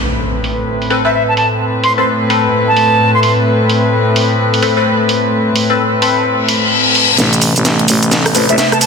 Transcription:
0.00 7.14 A2 medium
0.00 7.14 A3 medium
0.00 7.14 C4 medium
0.00 7.14 B4 medium
0.00 impact medium
0.44 open hi-hat medium
0.82 open hi-hat medium
0.90 1.01 C4 medium
0.90 1.01 A4 medium
0.90 1.01 B4 medium
0.90 open hi-hat loud
1.05 1.16 C4 medium
1.05 1.16 A4 medium
1.05 1.16 B4 medium
1.05 1.11 E5 medium
1.14 1.23 E5 medium
1.28 1.34 A5 medium
1.37 1.46 A5 medium
1.37 open hi-hat loud
1.84 1.93 C6 medium
1.84 open hi-hat loud
1.98 2.09 C4 medium
1.98 2.09 A4 medium
1.98 2.09 B4 medium
1.98 2.04 C6 medium
2.30 2.52 C4 medium
2.30 2.52 A4 medium
2.30 2.52 B4 medium
2.30 open hi-hat loud
2.68 3.11 A5 medium
2.77 open hi-hat loud
3.14 3.20 C6 medium
3.23 3.32 C6 medium
3.23 open hi-hat loud
3.69 open hi-hat loud
4.16 open hi-hat loud
4.54 open hi-hat medium
4.62 4.73 C4 medium
4.62 4.73 A4 medium
4.62 4.73 B4 medium
4.62 open hi-hat loud
4.77 4.88 C4 medium
4.77 4.88 A4 medium
4.77 4.88 B4 medium
5.09 open hi-hat loud
5.56 open hi-hat loud
5.70 5.81 C4 medium
5.70 5.81 A4 medium
5.70 5.81 B4 medium
6.02 6.24 C4 medium
6.02 6.24 A4 medium
6.02 6.24 B4 medium
6.02 open hi-hat loud
6.25 reverse cymbal medium
6.49 open hi-hat loud
6.95 open hi-hat loud
7.18 7.54 A1 medium
7.18 8.86 C3 medium
7.18 8.86 A3 medium
7.18 8.86 B3 medium
7.18 snare soft
7.18 closed hi-hat medium
7.18 riser medium
7.18 shaker soft
7.33 closed hi-hat soft
7.33 shaker soft
7.42 open hi-hat medium
7.42 shaker medium
7.56 7.87 A1 medium
7.56 closed hi-hat soft
7.56 shaker soft
7.65 snare medium
7.65 closed hi-hat medium
7.65 shaker soft
7.79 closed hi-hat soft
7.88 8.33 A1 medium
7.88 open hi-hat loud
7.88 shaker medium
8.03 closed hi-hat medium
8.03 shaker soft
8.11 snare soft
8.11 closed hi-hat medium
8.11 shaker soft
8.26 cross-stick medium
8.26 open hi-hat medium
8.26 shaker soft
8.35 8.47 A1 loud
8.35 8.46 C4 medium
8.35 8.46 A4 medium
8.35 8.46 B4 medium
8.35 open hi-hat loud
8.35 shaker medium
8.49 8.56 A1 medium
8.49 8.60 C4 medium
8.49 8.60 A4 medium
8.49 8.60 B4 medium
8.49 8.55 E5 medium
8.49 closed hi-hat medium
8.49 shaker soft
8.58 8.67 E5 medium
8.58 snare medium
8.58 closed hi-hat medium
8.58 shaker soft
8.72 8.78 A5 medium
8.72 cross-stick medium
8.72 closed hi-hat soft
8.72 shaker soft
8.81 8.86 A5 medium
8.81 open hi-hat loud
8.81 shaker medium

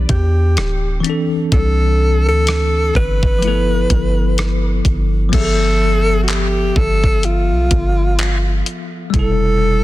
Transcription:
0.00 0.99 E3 medium
0.00 1.00 B3 medium
0.00 1.02 D4 medium
0.00 1.06 G4 medium
0.09 0.59 E2 loud
0.09 1.01 G4 medium
0.09 kick medium
0.09 closed hi-hat medium
0.57 1.02 D1 loud
0.57 cross-stick loud
0.57 closed hi-hat medium
1.00 3.37 E3 medium
1.00 3.38 C4 medium
1.04 3.40 D4 medium
1.04 closed hi-hat medium
1.10 3.41 A4 medium
1.52 2.29 C2 loud
1.52 2.24 A4 medium
1.52 kick loud
1.52 closed hi-hat medium
2.28 2.92 D2 loud
2.28 2.92 A4 loud
2.47 cross-stick loud
2.47 closed hi-hat medium
2.95 3.87 G1 medium
2.95 4.82 B4 loud
2.95 kick medium
3.23 kick medium
3.38 5.27 F3 medium
3.38 3.50 A3 soft
3.38 closed hi-hat medium
3.44 5.31 B3 medium
3.44 5.30 E4 medium
3.44 5.32 A4 medium
3.90 4.82 G1 loud
3.90 kick medium
3.90 closed hi-hat medium
4.38 cross-stick loud
4.38 closed hi-hat medium
4.85 5.31 G1 loud
4.85 kick medium
4.85 closed hi-hat medium
5.29 9.08 F3 medium
5.29 9.09 B3 medium
5.29 kick loud
5.29 closed hi-hat medium
5.29 crash medium
5.33 6.72 G1 loud
5.33 6.19 A4 loud
5.33 9.11 E5 medium
5.38 5.43 G#4 medium
5.45 9.16 A4 medium
6.23 6.31 F#4 medium
6.28 6.79 G4 loud
6.28 clap loud
6.28 closed hi-hat medium
6.76 7.53 G1 loud
6.76 7.26 A4 loud
6.76 kick medium
7.04 kick medium
7.23 8.67 F4 medium
7.23 closed hi-hat medium
7.52 7.70 B1 loud
7.71 8.63 G1 loud
7.71 kick medium
7.71 closed hi-hat medium
8.19 clap loud
8.19 closed hi-hat medium
8.66 closed hi-hat medium
9.10 9.84 F1 loud
9.10 9.84 B2 medium
9.10 9.84 G3 medium
9.10 kick loud
9.10 closed hi-hat medium
9.15 9.84 E4 medium
9.15 9.84 A4 medium
9.19 9.84 A4 medium

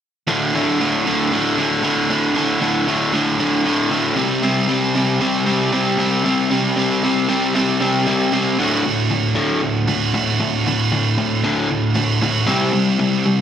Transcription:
0.28 0.54 D2 medium
0.28 0.54 A2 medium
0.28 0.55 D3 medium
0.54 0.80 D2 medium
0.54 0.80 A2 medium
0.54 0.81 D3 medium
0.80 1.05 D2 medium
0.80 1.06 A2 medium
0.80 1.07 D3 medium
1.07 1.30 D2 medium
1.07 1.31 A2 medium
1.07 1.32 D3 medium
1.32 1.56 D2 medium
1.32 1.57 A2 medium
1.32 1.57 D3 medium
1.57 1.82 D2 medium
1.57 1.82 A2 medium
1.57 1.83 D3 medium
1.83 2.09 D2 medium
1.83 2.09 A2 medium
1.83 2.09 D3 medium
2.10 2.34 D2 medium
2.10 2.35 A2 medium
2.10 2.35 D3 medium
2.35 2.60 D2 medium
2.35 2.60 A2 loud
2.35 2.60 D3 medium
2.61 2.86 D2 medium
2.61 2.87 A2 medium
2.61 2.87 D3 medium
2.88 3.12 D2 medium
2.88 3.13 A2 medium
2.88 3.13 D3 medium
3.13 3.38 D2 medium
3.13 3.39 A2 medium
3.13 3.39 D3 medium
3.39 3.64 D2 medium
3.39 3.64 A2 medium
3.39 3.65 D3 medium
3.65 3.90 D2 medium
3.65 3.90 A2 medium
3.65 3.90 D3 medium
3.91 4.15 D2 medium
3.91 4.15 A2 medium
3.91 4.16 D3 medium
4.16 4.42 C3 medium
4.16 4.43 G3 loud
4.16 4.43 C4 medium
4.43 4.68 C3 loud
4.43 4.69 G3 medium
4.43 4.69 C4 loud
4.69 4.95 C3 medium
4.69 4.95 G3 medium
4.69 4.96 C4 medium
4.95 5.20 C3 medium
4.95 5.21 G3 medium
4.95 5.21 C4 medium
5.21 5.44 C3 medium
5.21 5.45 G3 medium
5.21 5.45 C4 medium
5.46 5.72 C3 medium
5.46 5.72 G3 medium
5.46 5.72 C4 medium
5.73 5.97 C3 medium
5.73 5.97 G3 medium
5.73 5.98 C4 medium
5.98 6.22 C3 medium
5.98 6.23 G3 medium
5.98 6.23 C4 medium
6.23 6.49 C3 medium
6.23 6.49 G3 medium
6.23 6.50 C4 medium
6.50 6.75 C3 medium
6.50 6.75 G3 medium
6.50 6.76 C4 loud
6.76 7.02 C3 medium
6.76 7.02 G3 medium
6.76 7.03 C4 medium
7.03 7.27 C3 medium
7.03 7.28 G3 medium
7.03 7.28 C4 medium
7.28 7.53 C3 medium
7.28 7.54 G3 medium
7.28 7.54 C4 medium
7.54 7.79 C3 medium
7.54 7.80 G3 medium
7.54 7.81 C4 medium
7.81 8.06 C3 medium
7.81 8.06 G3 medium
7.81 8.07 C4 medium
8.07 8.31 C3 medium
8.07 8.32 G3 medium
8.07 8.32 C4 medium
8.32 8.57 C3 medium
8.32 8.57 G3 medium
8.32 8.57 C4 medium
8.59 8.83 D2 medium
8.59 8.83 A2 medium
8.59 8.83 D3 loud
8.59 9.88 A3 medium
8.59 9.86 F#4 medium
8.84 9.08 D2 medium
8.84 9.08 A2 medium
9.11 9.34 D2 medium
9.11 9.34 A2 medium
9.35 9.60 D2 medium
9.35 9.61 A2 loud
9.35 9.61 D3 loud
9.62 9.86 D2 medium
9.62 9.86 A2 medium
9.88 10.11 D2 medium
9.88 10.12 A2 medium
9.88 10.13 D3 medium
9.88 10.13 A3 medium
9.88 10.12 F#4 medium
10.14 10.37 D2 medium
10.14 10.38 A2 medium
10.14 10.65 D3 medium
10.14 10.65 A3 medium
10.14 10.66 F#4 medium
10.40 10.63 D2 medium
10.40 10.64 A2 medium
10.67 10.90 D2 medium
10.67 10.90 A2 medium
10.67 11.95 D3 medium
10.67 11.94 A3 medium
10.67 11.93 F#4 medium
10.92 11.15 D2 medium
10.92 11.15 A2 medium
11.18 11.41 D2 medium
11.18 11.41 A2 medium
11.44 11.68 D2 medium
11.44 11.69 A2 medium
11.44 11.69 D3 loud
11.71 11.94 D2 medium
11.71 11.94 A2 medium
11.94 12.19 D2 medium
11.94 12.19 A2 medium
11.94 12.21 D3 medium
11.94 12.20 A3 medium
11.94 12.19 F#4 medium
12.22 12.45 D2 medium
12.22 12.45 A2 medium
12.22 12.47 D3 medium
12.22 12.47 A3 medium
12.22 12.47 F#4 medium
12.46 12.71 C3 medium
12.46 12.72 G3 medium
12.46 12.72 C4 loud
12.46 13.41 E4 medium
12.46 13.41 G4 medium
12.46 13.41 C5 medium
12.73 12.96 C3 medium
12.73 12.97 G3 medium
12.99 13.23 C3 medium
12.99 13.23 G3 medium
13.26 13.41 C3 medium
13.26 13.41 G3 medium

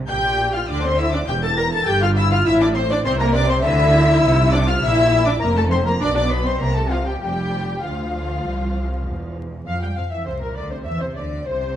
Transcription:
0.08 0.65 A#1 medium
0.08 0.65 A#2 medium
0.08 0.51 G4 loud
0.08 0.51 G5 loud
0.08 0.50 G6 loud
0.54 0.61 F4 medium
0.54 0.69 F5 medium
0.54 0.69 F6 loud
0.68 1.27 D2 medium
0.68 1.28 D3 medium
0.68 0.84 D4 loud
0.68 0.83 D5 loud
0.68 0.84 D6 loud
0.83 0.99 C4 loud
0.83 0.99 C5 loud
0.83 0.99 C6 loud
0.98 1.05 E4 loud
0.98 1.14 E5 loud
0.98 1.14 E6 loud
1.13 1.20 D4 medium
1.13 1.19 D5 medium
1.13 1.29 D6 loud
1.28 1.87 E1 medium
1.28 1.86 E2 medium
1.28 1.34 G4 loud
1.28 1.34 G5 loud
1.28 1.44 G6 loud
1.43 1.49 A4 loud
1.43 1.58 A5 loud
1.43 1.59 A6 loud
1.57 1.63 A#4 loud
1.57 1.72 A#5 loud
1.57 1.73 A#6 loud
1.71 1.87 A4 loud
1.71 1.87 A5 loud
1.71 1.88 A6 loud
1.87 2.46 G1 medium
1.87 2.46 G2 loud
1.87 2.02 G4 loud
1.87 2.02 G5 loud
1.87 2.03 G6 loud
2.01 2.17 F4 loud
2.01 2.08 F5 loud
2.01 2.09 F6 loud
2.16 2.32 E4 loud
2.16 2.22 E5 loud
2.16 2.32 E6 loud
2.31 2.47 F4 loud
2.31 2.38 F5 loud
2.31 2.47 F6 loud
2.46 3.05 A1 medium
2.46 3.05 A2 medium
2.46 2.61 E4 loud
2.46 2.61 E5 loud
2.46 2.53 E6 loud
2.62 2.77 D4 loud
2.62 2.69 D5 loud
2.62 2.68 D6 loud
2.75 2.82 C4 loud
2.75 2.91 C5 loud
2.75 2.81 C6 loud
2.91 2.97 D4 loud
2.91 3.06 D5 loud
2.91 2.98 D6 loud
3.05 3.64 C2 loud
3.05 3.64 C3 loud
3.05 3.20 C4 loud
3.05 3.20 C5 loud
3.05 3.12 C6 loud
3.20 3.35 A#3 loud
3.20 3.35 A#4 loud
3.20 3.26 A#5 loud
3.34 3.50 D4 loud
3.34 3.50 D5 loud
3.34 3.50 D6 loud
3.49 3.65 C4 loud
3.49 3.65 C5 loud
3.49 3.56 C6 loud
3.64 4.23 D2 loud
3.64 4.22 D3 loud
3.64 4.52 E4 loud
3.64 4.52 E5 loud
3.64 4.52 E6 loud
4.24 4.82 C2 loud
4.24 4.81 C3 loud
4.52 4.68 D4 loud
4.52 4.58 D5 loud
4.52 4.68 D6 loud
4.67 4.82 F4 loud
4.67 4.73 F5 loud
4.67 4.83 F6 loud
4.82 5.41 A#1 loud
4.82 5.40 A#2 medium
4.82 5.26 E4 loud
4.82 5.26 E5 loud
4.82 5.27 E6 loud
5.26 5.33 D4 medium
5.26 5.41 D5 loud
5.26 5.42 D6 loud
5.41 6.00 F1 medium
5.41 6.00 F2 loud
5.41 5.56 A#3 loud
5.41 5.56 A#4 loud
5.41 5.47 A#5 loud
5.56 5.62 A3 loud
5.56 5.71 A4 loud
5.56 5.63 A5 loud
5.70 5.85 C4 loud
5.70 5.86 C5 loud
5.70 5.77 C6 loud
5.85 6.00 A#3 medium
5.85 5.92 A#4 loud
5.85 6.01 A#5 loud
6.00 6.60 B1 loud
6.00 6.60 B2 loud
6.00 6.06 D4 loud
6.00 6.15 D5 loud
6.00 6.15 D6 loud
6.15 6.21 D4 loud
6.15 6.31 D5 loud
6.15 6.30 D6 loud
6.29 6.45 B3 medium
6.29 6.45 B4 loud
6.29 6.45 B5 loud
6.44 6.60 C4 medium
6.44 6.61 C5 medium
6.44 6.61 C6 loud
6.60 7.21 C2 medium
6.60 7.21 C3 medium
6.60 6.75 A#3 medium
6.60 6.76 A#4 loud
6.60 6.75 A#5 loud
6.75 6.81 A3 medium
6.75 6.82 A4 medium
6.75 6.91 A5 loud
6.90 6.96 F3 medium
6.90 6.97 F4 medium
6.90 7.07 F5 loud
7.06 7.20 G3 medium
7.06 7.20 G4 medium
7.06 7.20 G5 medium
7.21 7.83 F1 medium
7.21 7.83 F2 medium
7.21 7.82 G3 medium
7.21 7.82 G4 medium
7.21 7.82 G5 loud
7.82 8.44 D2 medium
7.82 9.34 F3 medium
7.82 9.37 F4 medium
7.82 9.36 F5 medium
8.45 9.05 C2 medium
9.06 9.67 E1 medium
9.06 9.67 E2 medium
9.67 9.81 F2 medium
9.67 9.81 F3 medium
9.67 9.81 F5 medium
9.82 9.88 G3 medium
9.82 9.97 G5 medium
9.82 9.98 G5 medium
9.96 10.03 F2 medium
9.96 10.03 F3 medium
9.96 10.11 F5 medium
9.96 10.12 F5 medium
9.96 10.03 F5 medium
10.11 10.26 E3 medium
10.11 10.26 E5 medium
10.11 10.18 E5 medium
10.26 10.42 C2 medium
10.26 10.42 C3 medium
10.26 10.32 C5 medium
10.26 10.42 C5 medium
10.40 10.56 A#2 medium
10.40 10.55 A#4 medium
10.40 10.56 A#4 medium
10.40 10.48 A#4 soft
10.55 10.71 D2 medium
10.55 10.71 D3 medium
10.55 10.61 D5 medium
10.55 10.71 D5 medium
10.71 10.86 C3 medium
10.71 10.77 C5 medium
10.71 10.86 C5 medium
10.71 10.77 C5 medium
10.85 11.01 E2 medium
10.85 11.01 E3 medium
10.85 11.00 E5 medium
10.85 11.01 E5 medium
10.85 10.92 E5 medium
11.01 11.16 C3 medium
11.01 11.16 C5 medium
11.01 11.08 C5 medium
11.15 11.46 D2 medium
11.15 11.46 D3 medium
11.15 11.23 D5 medium
11.15 11.46 D5 medium
11.45 11.76 C2 medium
11.45 11.76 C3 medium
11.45 11.76 C5 medium

